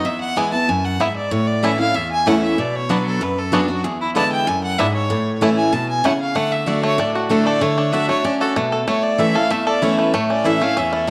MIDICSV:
0, 0, Header, 1, 4, 480
1, 0, Start_track
1, 0, Key_signature, 3, "major"
1, 0, Tempo, 315292
1, 78, Time_signature, 4, 2, 24, 8
1, 16900, End_track
2, 0, Start_track
2, 0, Title_t, "Fiddle"
2, 0, Program_c, 0, 110
2, 78, Note_on_c, 0, 76, 85
2, 304, Note_off_c, 0, 76, 0
2, 313, Note_on_c, 0, 78, 100
2, 559, Note_on_c, 0, 80, 98
2, 581, Note_off_c, 0, 78, 0
2, 788, Note_off_c, 0, 80, 0
2, 797, Note_on_c, 0, 81, 103
2, 1044, Note_on_c, 0, 80, 87
2, 1067, Note_off_c, 0, 81, 0
2, 1289, Note_on_c, 0, 78, 93
2, 1311, Note_off_c, 0, 80, 0
2, 1532, Note_on_c, 0, 76, 80
2, 1555, Note_off_c, 0, 78, 0
2, 1757, Note_off_c, 0, 76, 0
2, 1766, Note_on_c, 0, 74, 82
2, 1995, Note_on_c, 0, 73, 88
2, 2018, Note_off_c, 0, 74, 0
2, 2237, Note_on_c, 0, 74, 91
2, 2260, Note_off_c, 0, 73, 0
2, 2491, Note_on_c, 0, 76, 97
2, 2514, Note_off_c, 0, 74, 0
2, 2723, Note_off_c, 0, 76, 0
2, 2732, Note_on_c, 0, 77, 112
2, 2972, Note_on_c, 0, 76, 94
2, 2994, Note_off_c, 0, 77, 0
2, 3205, Note_off_c, 0, 76, 0
2, 3214, Note_on_c, 0, 80, 108
2, 3456, Note_on_c, 0, 78, 94
2, 3479, Note_off_c, 0, 80, 0
2, 3688, Note_off_c, 0, 78, 0
2, 3697, Note_on_c, 0, 76, 91
2, 3945, Note_on_c, 0, 74, 81
2, 3968, Note_off_c, 0, 76, 0
2, 4189, Note_on_c, 0, 73, 96
2, 4212, Note_off_c, 0, 74, 0
2, 4426, Note_on_c, 0, 71, 89
2, 4449, Note_off_c, 0, 73, 0
2, 4660, Note_off_c, 0, 71, 0
2, 4671, Note_on_c, 0, 69, 91
2, 4909, Note_on_c, 0, 71, 88
2, 4932, Note_off_c, 0, 69, 0
2, 5144, Note_on_c, 0, 69, 90
2, 5167, Note_off_c, 0, 71, 0
2, 5380, Note_on_c, 0, 68, 78
2, 5403, Note_off_c, 0, 69, 0
2, 5608, Note_off_c, 0, 68, 0
2, 5617, Note_on_c, 0, 66, 79
2, 5844, Note_on_c, 0, 68, 85
2, 5867, Note_off_c, 0, 66, 0
2, 6089, Note_off_c, 0, 68, 0
2, 6098, Note_on_c, 0, 64, 100
2, 6237, Note_off_c, 0, 64, 0
2, 6337, Note_on_c, 0, 81, 103
2, 6558, Note_off_c, 0, 81, 0
2, 6580, Note_on_c, 0, 79, 102
2, 6815, Note_on_c, 0, 80, 94
2, 6838, Note_off_c, 0, 79, 0
2, 7045, Note_off_c, 0, 80, 0
2, 7054, Note_on_c, 0, 78, 104
2, 7281, Note_on_c, 0, 76, 95
2, 7304, Note_off_c, 0, 78, 0
2, 7512, Note_off_c, 0, 76, 0
2, 7521, Note_on_c, 0, 73, 92
2, 8191, Note_off_c, 0, 73, 0
2, 8483, Note_on_c, 0, 80, 102
2, 8724, Note_on_c, 0, 81, 98
2, 8747, Note_off_c, 0, 80, 0
2, 8956, Note_off_c, 0, 81, 0
2, 8965, Note_on_c, 0, 80, 104
2, 9213, Note_on_c, 0, 78, 91
2, 9236, Note_off_c, 0, 80, 0
2, 9439, Note_off_c, 0, 78, 0
2, 9448, Note_on_c, 0, 77, 97
2, 9677, Note_on_c, 0, 78, 104
2, 9700, Note_off_c, 0, 77, 0
2, 9923, Note_on_c, 0, 76, 94
2, 9946, Note_off_c, 0, 78, 0
2, 10146, Note_on_c, 0, 74, 90
2, 10169, Note_off_c, 0, 76, 0
2, 10385, Note_off_c, 0, 74, 0
2, 10394, Note_on_c, 0, 73, 109
2, 10632, Note_on_c, 0, 74, 92
2, 10655, Note_off_c, 0, 73, 0
2, 10868, Note_off_c, 0, 74, 0
2, 10878, Note_on_c, 0, 66, 51
2, 11117, Note_on_c, 0, 69, 91
2, 11140, Note_off_c, 0, 66, 0
2, 11345, Note_on_c, 0, 74, 110
2, 11368, Note_off_c, 0, 69, 0
2, 11585, Note_on_c, 0, 73, 92
2, 11608, Note_off_c, 0, 74, 0
2, 12065, Note_on_c, 0, 76, 110
2, 12088, Note_off_c, 0, 73, 0
2, 12310, Note_off_c, 0, 76, 0
2, 12319, Note_on_c, 0, 73, 99
2, 12549, Note_on_c, 0, 74, 93
2, 12572, Note_off_c, 0, 73, 0
2, 12778, Note_off_c, 0, 74, 0
2, 12787, Note_on_c, 0, 69, 95
2, 12934, Note_off_c, 0, 69, 0
2, 13511, Note_on_c, 0, 73, 91
2, 13743, Note_on_c, 0, 74, 94
2, 13765, Note_off_c, 0, 73, 0
2, 13989, Note_on_c, 0, 76, 102
2, 14012, Note_off_c, 0, 74, 0
2, 14233, Note_on_c, 0, 77, 117
2, 14256, Note_off_c, 0, 76, 0
2, 14472, Note_on_c, 0, 76, 96
2, 14495, Note_off_c, 0, 77, 0
2, 14706, Note_off_c, 0, 76, 0
2, 14716, Note_on_c, 0, 74, 95
2, 14963, Note_on_c, 0, 73, 89
2, 14986, Note_off_c, 0, 74, 0
2, 15185, Note_off_c, 0, 73, 0
2, 15194, Note_on_c, 0, 71, 84
2, 15442, Note_on_c, 0, 73, 82
2, 15465, Note_off_c, 0, 71, 0
2, 15673, Note_off_c, 0, 73, 0
2, 15683, Note_on_c, 0, 74, 93
2, 15921, Note_on_c, 0, 76, 96
2, 15944, Note_off_c, 0, 74, 0
2, 16171, Note_on_c, 0, 77, 110
2, 16193, Note_off_c, 0, 76, 0
2, 16413, Note_on_c, 0, 76, 88
2, 16435, Note_off_c, 0, 77, 0
2, 16641, Note_off_c, 0, 76, 0
2, 16650, Note_on_c, 0, 69, 62
2, 16900, Note_off_c, 0, 69, 0
2, 16900, End_track
3, 0, Start_track
3, 0, Title_t, "Five-string banjo"
3, 0, Program_c, 1, 105
3, 563, Note_on_c, 1, 59, 64
3, 569, Note_on_c, 1, 64, 63
3, 575, Note_off_c, 1, 64, 0
3, 575, Note_on_c, 1, 64, 62
3, 669, Note_off_c, 1, 59, 0
3, 674, Note_off_c, 1, 64, 0
3, 1528, Note_on_c, 1, 59, 67
3, 1539, Note_on_c, 1, 64, 72
3, 1541, Note_off_c, 1, 64, 0
3, 1541, Note_on_c, 1, 64, 68
3, 1633, Note_off_c, 1, 59, 0
3, 1638, Note_off_c, 1, 64, 0
3, 2490, Note_on_c, 1, 57, 60
3, 2500, Note_on_c, 1, 61, 60
3, 2503, Note_on_c, 1, 64, 66
3, 2595, Note_off_c, 1, 57, 0
3, 2597, Note_off_c, 1, 61, 0
3, 2601, Note_off_c, 1, 64, 0
3, 3453, Note_on_c, 1, 57, 67
3, 3461, Note_on_c, 1, 61, 68
3, 3470, Note_on_c, 1, 64, 66
3, 3556, Note_off_c, 1, 57, 0
3, 3561, Note_off_c, 1, 61, 0
3, 3564, Note_off_c, 1, 64, 0
3, 4411, Note_on_c, 1, 59, 61
3, 4419, Note_on_c, 1, 62, 60
3, 4420, Note_on_c, 1, 66, 58
3, 4516, Note_off_c, 1, 59, 0
3, 4519, Note_off_c, 1, 62, 0
3, 4520, Note_off_c, 1, 66, 0
3, 5372, Note_on_c, 1, 59, 72
3, 5381, Note_on_c, 1, 66, 70
3, 5384, Note_on_c, 1, 62, 73
3, 5477, Note_off_c, 1, 59, 0
3, 5480, Note_off_c, 1, 62, 0
3, 5481, Note_off_c, 1, 66, 0
3, 6339, Note_on_c, 1, 59, 66
3, 6346, Note_on_c, 1, 62, 64
3, 6349, Note_on_c, 1, 64, 65
3, 6440, Note_off_c, 1, 59, 0
3, 6442, Note_off_c, 1, 62, 0
3, 6445, Note_off_c, 1, 64, 0
3, 7295, Note_on_c, 1, 59, 66
3, 7304, Note_on_c, 1, 64, 72
3, 7307, Note_on_c, 1, 62, 72
3, 7399, Note_off_c, 1, 59, 0
3, 7401, Note_off_c, 1, 62, 0
3, 7402, Note_off_c, 1, 64, 0
3, 8250, Note_on_c, 1, 57, 65
3, 8256, Note_on_c, 1, 61, 66
3, 8266, Note_on_c, 1, 64, 67
3, 8355, Note_off_c, 1, 57, 0
3, 8358, Note_off_c, 1, 61, 0
3, 8360, Note_off_c, 1, 64, 0
3, 9211, Note_on_c, 1, 57, 72
3, 9219, Note_on_c, 1, 61, 73
3, 9220, Note_on_c, 1, 64, 73
3, 9315, Note_off_c, 1, 57, 0
3, 9317, Note_off_c, 1, 61, 0
3, 9319, Note_off_c, 1, 64, 0
3, 9677, Note_on_c, 1, 57, 79
3, 10161, Note_on_c, 1, 66, 57
3, 10398, Note_off_c, 1, 57, 0
3, 10404, Note_on_c, 1, 57, 73
3, 10648, Note_on_c, 1, 62, 67
3, 10836, Note_off_c, 1, 66, 0
3, 10891, Note_on_c, 1, 66, 64
3, 11117, Note_off_c, 1, 57, 0
3, 11123, Note_on_c, 1, 57, 73
3, 11319, Note_off_c, 1, 62, 0
3, 11367, Note_on_c, 1, 69, 56
3, 11557, Note_off_c, 1, 66, 0
3, 11592, Note_off_c, 1, 57, 0
3, 11598, Note_on_c, 1, 57, 73
3, 11839, Note_on_c, 1, 62, 64
3, 12078, Note_on_c, 1, 66, 58
3, 12313, Note_off_c, 1, 57, 0
3, 12319, Note_on_c, 1, 57, 71
3, 12510, Note_off_c, 1, 62, 0
3, 12558, Note_on_c, 1, 62, 64
3, 12753, Note_off_c, 1, 66, 0
3, 12804, Note_on_c, 1, 66, 56
3, 13030, Note_off_c, 1, 57, 0
3, 13036, Note_on_c, 1, 57, 80
3, 13233, Note_off_c, 1, 62, 0
3, 13272, Note_off_c, 1, 69, 0
3, 13279, Note_on_c, 1, 69, 58
3, 13472, Note_off_c, 1, 66, 0
3, 13506, Note_off_c, 1, 57, 0
3, 13513, Note_on_c, 1, 57, 78
3, 13997, Note_on_c, 1, 64, 55
3, 14234, Note_off_c, 1, 69, 0
3, 14240, Note_on_c, 1, 69, 61
3, 14471, Note_off_c, 1, 57, 0
3, 14477, Note_on_c, 1, 57, 68
3, 14673, Note_off_c, 1, 64, 0
3, 14711, Note_off_c, 1, 69, 0
3, 14717, Note_on_c, 1, 69, 63
3, 14955, Note_on_c, 1, 64, 66
3, 15194, Note_off_c, 1, 57, 0
3, 15200, Note_on_c, 1, 57, 61
3, 15429, Note_off_c, 1, 57, 0
3, 15435, Note_on_c, 1, 57, 79
3, 15632, Note_off_c, 1, 64, 0
3, 15683, Note_on_c, 1, 61, 59
3, 15913, Note_on_c, 1, 64, 57
3, 16155, Note_off_c, 1, 57, 0
3, 16161, Note_on_c, 1, 57, 65
3, 16352, Note_off_c, 1, 61, 0
3, 16392, Note_on_c, 1, 61, 68
3, 16591, Note_off_c, 1, 64, 0
3, 16634, Note_on_c, 1, 64, 63
3, 16849, Note_off_c, 1, 69, 0
3, 16864, Note_off_c, 1, 57, 0
3, 16900, Note_off_c, 1, 61, 0
3, 16900, Note_off_c, 1, 64, 0
3, 16900, End_track
4, 0, Start_track
4, 0, Title_t, "Steel-string acoustic guitar"
4, 0, Program_c, 2, 25
4, 72, Note_on_c, 2, 40, 94
4, 549, Note_on_c, 2, 52, 87
4, 556, Note_on_c, 2, 56, 90
4, 566, Note_on_c, 2, 59, 82
4, 570, Note_on_c, 2, 64, 98
4, 774, Note_off_c, 2, 64, 0
4, 788, Note_off_c, 2, 52, 0
4, 792, Note_off_c, 2, 56, 0
4, 792, Note_on_c, 2, 64, 64
4, 797, Note_off_c, 2, 59, 0
4, 816, Note_on_c, 2, 59, 54
4, 990, Note_off_c, 2, 40, 0
4, 1025, Note_off_c, 2, 64, 0
4, 1037, Note_off_c, 2, 59, 0
4, 1048, Note_on_c, 2, 42, 89
4, 1501, Note_off_c, 2, 42, 0
4, 1520, Note_on_c, 2, 44, 89
4, 1978, Note_off_c, 2, 44, 0
4, 1998, Note_on_c, 2, 45, 94
4, 2476, Note_on_c, 2, 52, 86
4, 2484, Note_on_c, 2, 57, 94
4, 2491, Note_on_c, 2, 61, 91
4, 2497, Note_on_c, 2, 64, 93
4, 2695, Note_off_c, 2, 64, 0
4, 2713, Note_on_c, 2, 64, 59
4, 2714, Note_off_c, 2, 52, 0
4, 2718, Note_off_c, 2, 57, 0
4, 2721, Note_off_c, 2, 61, 0
4, 2737, Note_on_c, 2, 61, 49
4, 2915, Note_off_c, 2, 45, 0
4, 2948, Note_off_c, 2, 64, 0
4, 2958, Note_on_c, 2, 40, 86
4, 2960, Note_off_c, 2, 61, 0
4, 3437, Note_on_c, 2, 52, 85
4, 3449, Note_on_c, 2, 57, 93
4, 3455, Note_on_c, 2, 61, 109
4, 3464, Note_on_c, 2, 64, 108
4, 3875, Note_off_c, 2, 40, 0
4, 3898, Note_off_c, 2, 52, 0
4, 3904, Note_off_c, 2, 57, 0
4, 3907, Note_off_c, 2, 61, 0
4, 3911, Note_off_c, 2, 64, 0
4, 3928, Note_on_c, 2, 47, 92
4, 4404, Note_on_c, 2, 54, 90
4, 4414, Note_on_c, 2, 59, 89
4, 4423, Note_on_c, 2, 62, 96
4, 4426, Note_on_c, 2, 66, 94
4, 4841, Note_off_c, 2, 47, 0
4, 4861, Note_off_c, 2, 54, 0
4, 4867, Note_off_c, 2, 59, 0
4, 4871, Note_off_c, 2, 62, 0
4, 4873, Note_off_c, 2, 66, 0
4, 4885, Note_on_c, 2, 42, 92
4, 5356, Note_on_c, 2, 54, 89
4, 5369, Note_on_c, 2, 59, 99
4, 5372, Note_on_c, 2, 62, 112
4, 5383, Note_on_c, 2, 66, 97
4, 5587, Note_off_c, 2, 66, 0
4, 5595, Note_off_c, 2, 54, 0
4, 5602, Note_off_c, 2, 59, 0
4, 5603, Note_off_c, 2, 62, 0
4, 5605, Note_on_c, 2, 66, 72
4, 5629, Note_on_c, 2, 62, 55
4, 5799, Note_off_c, 2, 42, 0
4, 5835, Note_off_c, 2, 66, 0
4, 5847, Note_off_c, 2, 62, 0
4, 5848, Note_on_c, 2, 40, 90
4, 6318, Note_on_c, 2, 50, 81
4, 6329, Note_on_c, 2, 56, 98
4, 6337, Note_on_c, 2, 59, 95
4, 6345, Note_on_c, 2, 64, 98
4, 6760, Note_off_c, 2, 40, 0
4, 6778, Note_off_c, 2, 50, 0
4, 6784, Note_off_c, 2, 56, 0
4, 6788, Note_off_c, 2, 59, 0
4, 6792, Note_off_c, 2, 64, 0
4, 6807, Note_on_c, 2, 42, 102
4, 7263, Note_off_c, 2, 42, 0
4, 7291, Note_on_c, 2, 44, 100
4, 7745, Note_off_c, 2, 44, 0
4, 7764, Note_on_c, 2, 45, 96
4, 8238, Note_on_c, 2, 52, 95
4, 8248, Note_on_c, 2, 57, 89
4, 8257, Note_on_c, 2, 61, 94
4, 8262, Note_on_c, 2, 64, 97
4, 8676, Note_off_c, 2, 45, 0
4, 8697, Note_off_c, 2, 52, 0
4, 8703, Note_off_c, 2, 57, 0
4, 8707, Note_off_c, 2, 61, 0
4, 8709, Note_off_c, 2, 64, 0
4, 8717, Note_on_c, 2, 47, 96
4, 9177, Note_off_c, 2, 47, 0
4, 9195, Note_on_c, 2, 49, 99
4, 9655, Note_off_c, 2, 49, 0
4, 9670, Note_on_c, 2, 50, 96
4, 10125, Note_off_c, 2, 50, 0
4, 10143, Note_on_c, 2, 50, 80
4, 10152, Note_on_c, 2, 57, 83
4, 10161, Note_on_c, 2, 62, 89
4, 10169, Note_on_c, 2, 66, 98
4, 10609, Note_off_c, 2, 50, 0
4, 10613, Note_off_c, 2, 57, 0
4, 10618, Note_off_c, 2, 62, 0
4, 10622, Note_off_c, 2, 66, 0
4, 10628, Note_on_c, 2, 45, 96
4, 11106, Note_on_c, 2, 50, 88
4, 11116, Note_on_c, 2, 57, 96
4, 11126, Note_on_c, 2, 62, 92
4, 11131, Note_on_c, 2, 66, 109
4, 11547, Note_off_c, 2, 45, 0
4, 11569, Note_off_c, 2, 50, 0
4, 11574, Note_off_c, 2, 57, 0
4, 11580, Note_off_c, 2, 62, 0
4, 11582, Note_off_c, 2, 66, 0
4, 11588, Note_on_c, 2, 50, 103
4, 12050, Note_off_c, 2, 50, 0
4, 12069, Note_on_c, 2, 50, 87
4, 12077, Note_on_c, 2, 57, 92
4, 12083, Note_on_c, 2, 62, 86
4, 12092, Note_on_c, 2, 66, 96
4, 12290, Note_off_c, 2, 66, 0
4, 12308, Note_off_c, 2, 50, 0
4, 12308, Note_on_c, 2, 66, 69
4, 12312, Note_off_c, 2, 57, 0
4, 12315, Note_off_c, 2, 62, 0
4, 12336, Note_on_c, 2, 62, 52
4, 12543, Note_off_c, 2, 66, 0
4, 12545, Note_off_c, 2, 62, 0
4, 12551, Note_on_c, 2, 61, 92
4, 13012, Note_off_c, 2, 61, 0
4, 13034, Note_on_c, 2, 47, 91
4, 13493, Note_off_c, 2, 47, 0
4, 13511, Note_on_c, 2, 45, 99
4, 13981, Note_on_c, 2, 52, 87
4, 13992, Note_on_c, 2, 57, 83
4, 13997, Note_on_c, 2, 61, 92
4, 14007, Note_on_c, 2, 64, 98
4, 14211, Note_off_c, 2, 64, 0
4, 14223, Note_off_c, 2, 52, 0
4, 14229, Note_off_c, 2, 57, 0
4, 14229, Note_on_c, 2, 64, 63
4, 14231, Note_off_c, 2, 61, 0
4, 14250, Note_on_c, 2, 61, 52
4, 14427, Note_off_c, 2, 45, 0
4, 14463, Note_off_c, 2, 64, 0
4, 14469, Note_on_c, 2, 40, 99
4, 14473, Note_off_c, 2, 61, 0
4, 14947, Note_on_c, 2, 52, 85
4, 14957, Note_on_c, 2, 57, 101
4, 14967, Note_on_c, 2, 61, 102
4, 14970, Note_on_c, 2, 64, 104
4, 15387, Note_off_c, 2, 40, 0
4, 15409, Note_off_c, 2, 52, 0
4, 15414, Note_off_c, 2, 57, 0
4, 15419, Note_off_c, 2, 61, 0
4, 15421, Note_off_c, 2, 64, 0
4, 15431, Note_on_c, 2, 45, 102
4, 15900, Note_on_c, 2, 52, 80
4, 15911, Note_on_c, 2, 57, 92
4, 15920, Note_on_c, 2, 61, 92
4, 15924, Note_on_c, 2, 64, 104
4, 16132, Note_off_c, 2, 64, 0
4, 16143, Note_off_c, 2, 52, 0
4, 16149, Note_off_c, 2, 57, 0
4, 16150, Note_on_c, 2, 64, 67
4, 16153, Note_off_c, 2, 61, 0
4, 16174, Note_on_c, 2, 61, 55
4, 16348, Note_off_c, 2, 45, 0
4, 16384, Note_off_c, 2, 64, 0
4, 16393, Note_on_c, 2, 40, 92
4, 16396, Note_off_c, 2, 61, 0
4, 16900, Note_off_c, 2, 40, 0
4, 16900, End_track
0, 0, End_of_file